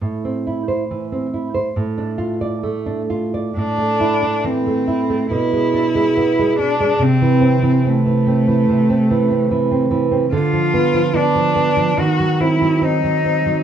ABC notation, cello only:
X:1
M:4/4
L:1/8
Q:1/4=71
K:Am
V:1 name="Cello"
z8 | D2 C2 E3 D | C2 A,4- A, z | F2 D2 ^F E ^D2 |]